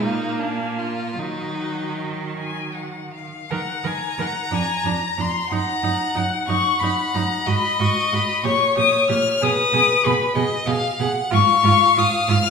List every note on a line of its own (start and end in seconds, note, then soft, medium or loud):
0.02 1.20 A#2 medium
0.02 1.19 A#3 medium
0.02 0.41 D#4 medium
0.02 0.45 A#5 soft
0.39 0.80 D4 medium
0.43 0.81 G#5 soft
0.78 1.20 F4 medium
0.78 1.18 A#5 soft
1.18 3.31 D#3 soft
1.18 2.92 F#3 soft
1.18 2.37 D#4 medium
1.18 1.61 D#5 soft
1.60 1.99 F#5 soft
1.97 2.36 D#5 soft
2.37 2.76 G#5 medium
2.74 3.13 F#5 medium
3.14 3.51 F5 medium
3.49 3.59 D#3 medium
3.49 3.59 A#4 medium
3.49 3.88 F#5 medium
3.49 5.47 A#5 medium
3.84 3.92 D#3 medium
3.84 3.92 A#4 medium
3.84 4.23 G#5 medium
4.18 4.26 D#3 medium
4.18 4.27 A#4 medium
4.18 4.55 F#5 medium
4.51 4.59 F2 medium
4.51 4.59 D4 medium
4.51 4.89 G#5 medium
4.84 4.92 F2 medium
4.84 4.93 D4 medium
4.88 5.22 A#5 medium
5.18 5.26 F2 medium
5.18 5.26 D4 soft
5.18 5.55 C6 medium
5.50 5.59 F#2 medium
5.50 5.59 D#4 medium
5.50 6.45 F#5 medium
5.50 6.18 A#5 loud
5.83 5.91 F#2 medium
5.83 5.91 D#4 medium
6.14 6.24 F#2 medium
6.14 6.22 D#4 medium
6.14 6.47 F#5 medium
6.46 6.56 F#2 medium
6.46 6.56 D#4 medium
6.46 7.48 F#5 medium
6.46 6.81 C#6 loud
6.79 6.89 F#2 medium
6.79 6.90 D#4 medium
6.79 7.15 B5 medium
7.13 7.23 F#2 medium
7.13 7.22 D#4 medium
7.13 7.49 A#5 medium
7.46 7.54 G#2 medium
7.46 7.54 F#4 medium
7.46 8.46 D#5 medium
7.46 7.80 B5 loud
7.80 7.88 G#2 medium
7.80 7.88 F#4 medium
7.80 8.15 C#6 medium
8.12 8.20 G#2 medium
8.12 8.20 F#4 medium
8.12 8.43 B5 medium
8.44 8.52 A#2 medium
8.44 8.52 G4 medium
8.44 9.43 C#5 medium
8.44 8.77 C#6 loud
8.76 8.85 A#2 medium
8.76 8.84 G4 medium
8.76 9.09 D#6 loud
9.09 9.17 A#2 medium
9.09 9.17 G4 medium
9.09 9.45 F6 loud
9.41 9.50 B2 medium
9.41 9.49 G#4 medium
9.41 10.35 B4 medium
9.41 10.07 D#6 loud
9.73 9.81 B2 medium
9.73 9.81 G#4 medium
10.03 10.13 B2 medium
10.03 10.11 G#4 medium
10.03 10.36 B5 loud
10.35 10.43 B2 medium
10.35 10.43 G#4 medium
10.35 10.68 D#5 medium
10.66 10.74 B2 medium
10.66 10.75 G#4 medium
10.66 11.01 F5 medium
11.00 11.08 B2 medium
11.00 11.08 G#4 medium
11.00 11.34 F#5 medium
11.31 11.40 G#2 medium
11.31 11.39 F4 medium
11.31 12.50 F5 loud
11.31 12.00 C#6 loud
11.63 11.71 G#2 medium
11.63 11.73 F4 medium
11.97 12.05 G#2 medium
11.97 12.05 F4 medium
11.97 12.33 D#6 loud
12.28 12.36 G#2 medium
12.28 12.37 F4 medium
12.28 12.50 F6 loud